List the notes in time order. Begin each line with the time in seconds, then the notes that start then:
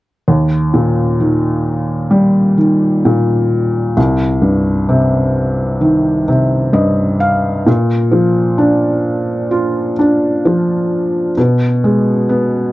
0.28 D#2
0.74 A#2
1.20 D#3
2.11 G3
2.58 D#3
3.05 A#2
3.97 C2
4.42 G2
4.89 C3
5.81 D#3
6.28 C3
6.73 G2 D#5
7.20 F5
7.66 A#2
8.12 F3
8.58 D4
9.51 F4
9.99 D4
10.45 F3
11.37 B2
11.84 G#3
12.29 B3